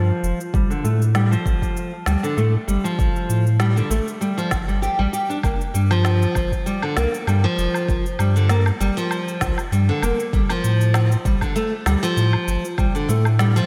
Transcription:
0.00 0.12 G2 medium
0.00 0.38 F3 loud
0.23 0.33 F1 medium
0.23 cabasa medium
0.41 cabasa soft
0.54 0.64 A1 loud
0.54 0.69 G3 medium
0.54 kick loud
0.54 cabasa soft
0.70 0.83 D3 medium
0.70 cabasa soft
0.84 1.37 A2 medium
0.84 1.00 A3 medium
0.84 cabasa medium
1.02 cabasa soft
1.15 1.31 G3 medium
1.15 snare medium
1.15 cabasa soft
1.31 1.91 F3 medium
1.31 cabasa soft
1.46 1.56 A1 medium
1.46 kick loud
1.46 cabasa medium
1.62 kick medium
1.62 cabasa soft
1.77 cabasa soft
2.06 2.17 D2 medium
2.06 2.22 G3 medium
2.06 snare medium
2.06 cabasa medium
2.23 2.36 D3 medium
2.23 cabasa soft
2.37 2.57 A2 medium
2.37 2.53 A3 medium
2.37 cabasa soft
2.68 2.78 G1 medium
2.68 2.84 G3 medium
2.68 cabasa medium
2.84 3.44 F3 medium
2.84 cabasa soft
2.99 3.09 A1 medium
2.99 kick loud
2.99 cabasa soft
3.16 cabasa soft
3.29 3.82 A2 medium
3.29 cabasa medium
3.47 cabasa soft
3.60 3.75 G3 medium
3.60 snare medium
3.60 cabasa soft
3.76 3.89 D3 medium
3.76 cabasa soft
3.90 4.00 A1 medium
3.90 4.06 A3 medium
3.90 cabasa medium
4.08 cabasa soft
4.21 4.37 G3 medium
4.21 cabasa soft
4.38 4.50 F3 medium
4.38 cabasa soft
4.51 4.89 G1 medium
4.51 kick medium
4.51 snare medium
4.51 cabasa medium
4.68 4.81 G3 medium
4.68 cabasa soft
4.82 4.97 G4 medium
4.82 cabasa soft
4.99 5.07 A1 medium
4.99 5.07 G3 medium
5.13 5.28 G4 medium
5.13 cabasa medium
5.30 5.38 D4 medium
5.30 cabasa soft
5.43 5.54 G1 loud
5.43 5.59 A#3 medium
5.43 kick loud
5.43 cabasa soft
5.43 low woodblock medium
5.61 cabasa soft
5.74 6.27 G2 medium
5.74 5.90 G3 medium
5.74 cabasa medium
5.91 6.50 F3 medium
5.91 cabasa soft
5.91 low woodblock medium
6.05 snare medium
6.05 cabasa soft
6.22 cabasa soft
6.35 6.46 G1 medium
6.35 kick loud
6.35 cabasa medium
6.35 low woodblock medium
6.52 kick medium
6.52 cabasa soft
6.66 6.81 G3 medium
6.66 cabasa soft
6.82 6.95 D3 medium
6.82 low woodblock medium
6.97 7.07 C2 medium
6.97 7.12 A#3 medium
6.97 snare medium
6.97 cabasa medium
7.14 cabasa soft
7.27 7.47 G2 medium
7.27 7.43 G3 medium
7.27 cabasa soft
7.27 low woodblock medium
7.44 8.03 F3 loud
7.58 7.68 F1 medium
7.58 cabasa medium
7.74 cabasa soft
7.74 low woodblock medium
7.89 7.99 G1 medium
7.89 kick loud
7.89 cabasa soft
8.06 cabasa soft
8.19 8.71 G2 medium
8.19 8.34 G3 medium
8.19 cabasa medium
8.19 low woodblock medium
8.36 8.48 D3 medium
8.36 cabasa soft
8.49 8.66 A#3 medium
8.49 snare medium
8.49 cabasa soft
8.66 cabasa soft
8.66 low woodblock medium
8.80 8.90 G1 loud
8.80 8.96 G3 medium
8.80 cabasa medium
8.97 9.57 F3 medium
8.97 cabasa soft
9.11 cabasa soft
9.11 low woodblock medium
9.28 cabasa soft
9.41 9.52 C2 medium
9.41 kick medium
9.41 snare medium
9.41 cabasa medium
9.58 cabasa soft
9.58 low woodblock medium
9.72 9.92 G2 medium
9.72 9.87 G3 medium
9.72 cabasa soft
9.89 10.01 D3 medium
10.02 10.13 F1 medium
10.02 10.19 A#3 medium
10.02 cabasa medium
10.02 low woodblock medium
10.20 cabasa soft
10.33 10.43 A1 loud
10.33 10.49 G3 medium
10.33 kick loud
10.33 cabasa soft
10.50 11.10 F3 loud
10.50 cabasa soft
10.50 low woodblock medium
10.64 11.16 A2 medium
10.64 cabasa medium
10.81 cabasa soft
10.94 snare medium
10.94 cabasa soft
10.94 low woodblock medium
11.12 cabasa soft
11.25 11.35 A1 loud
11.25 11.40 G3 medium
11.25 kick loud
11.25 cabasa medium
11.41 11.54 D3 medium
11.41 kick medium
11.41 cabasa soft
11.41 low woodblock medium
11.56 11.72 A3 medium
11.56 cabasa soft
11.86 11.96 D2 medium
11.86 12.02 G3 medium
11.86 snare medium
11.86 cabasa medium
11.86 low woodblock medium
12.03 12.62 F3 loud
12.03 cabasa soft
12.17 12.36 A2 medium
12.17 cabasa soft
12.33 low woodblock medium
12.48 12.58 G1 medium
12.48 cabasa medium
12.65 cabasa soft
12.78 12.88 A1 medium
12.78 12.93 G3 medium
12.78 kick loud
12.78 cabasa soft
12.78 low woodblock medium
12.95 13.07 D3 medium
12.95 cabasa soft
13.08 13.61 A2 medium
13.08 13.25 A3 medium
13.08 cabasa medium
13.25 cabasa soft
13.25 low woodblock medium
13.39 13.55 G3 medium
13.39 snare medium
13.39 cabasa soft
13.56 13.66 F3 medium
13.56 cabasa soft

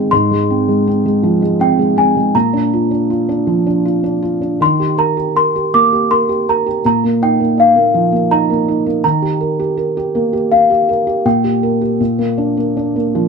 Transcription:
0.00 0.14 D#3 medium
0.00 0.14 G#3 soft
0.00 0.14 C4 medium
0.11 2.31 G#2 medium
0.11 1.19 C6 medium
0.31 0.67 G#3 soft
0.50 0.86 C4 soft
0.68 1.04 G#3 soft
0.87 1.58 C4 soft
1.06 1.41 G#3 soft
1.23 2.31 F3 medium
1.42 1.77 G#3 soft
1.60 1.95 C4 medium
1.60 1.99 G5 medium
1.79 2.15 G#3 soft
1.97 2.33 C4 soft
1.97 2.32 G#5 medium
2.17 2.34 G#3 soft
2.35 4.56 A#2 medium
2.35 4.19 A#5 medium
2.53 2.90 D4 soft
2.73 3.09 F4 soft
2.91 3.27 D4 soft
3.10 3.84 F4 soft
3.29 3.65 D4 soft
3.47 4.57 F3 medium
3.67 4.02 D4 soft
3.85 4.21 F4 soft
4.04 4.40 D4 soft
4.22 4.59 F4 soft
4.42 4.60 D4 soft
4.60 6.80 D#3 medium
4.60 5.00 C6 medium
4.80 5.15 G4 soft
4.98 5.34 A#4 soft
4.98 5.37 A#5 medium
5.17 5.54 G4 soft
5.36 6.09 A#4 soft
5.36 5.71 C6 medium
5.56 5.91 G4 soft
5.74 6.81 A#3 medium
5.74 6.12 D6 medium
5.93 6.28 G4 soft
6.11 6.47 A#4 medium
6.11 6.49 C6 medium
6.29 6.65 G4 soft
6.48 6.84 A#4 soft
6.48 6.85 A#5 medium
6.66 6.84 G4 soft
6.85 9.00 A#2 medium
6.85 7.02 A#5 medium
7.04 7.39 A#3 soft
7.22 7.56 D#4 medium
7.22 7.59 G5 medium
7.40 7.74 A#3 soft
7.58 8.30 D#4 soft
7.58 8.34 F5 medium
7.76 8.11 A#3 soft
7.94 9.01 F3 medium
8.12 8.48 A#3 soft
8.31 8.67 D#4 medium
8.31 8.82 A#5 medium
8.50 8.85 A#3 soft
8.68 9.03 D#4 medium
8.86 9.04 A#3 soft
9.04 11.22 D#3 medium
9.04 10.56 A#5 medium
9.22 9.58 G4 soft
9.41 9.76 A#4 soft
9.59 9.96 G4 soft
9.77 10.51 A#4 medium
9.97 10.31 G4 medium
10.15 11.23 A#3 medium
10.33 10.69 G4 soft
10.52 10.87 A#4 medium
10.52 11.28 F5 medium
10.70 11.05 G4 soft
10.89 11.25 A#4 soft
11.07 11.25 G4 medium
11.25 11.98 A#2 medium
11.25 12.72 G5 medium
11.44 11.80 G4 soft
11.63 11.99 A#4 soft
11.81 12.00 G4 soft
12.00 13.28 A#2 medium
12.19 12.56 A#3 soft
12.38 12.75 D4 soft
12.57 12.94 A#3 soft
12.77 13.28 D4 soft
12.96 13.28 A#3 soft
13.15 13.28 F3 medium

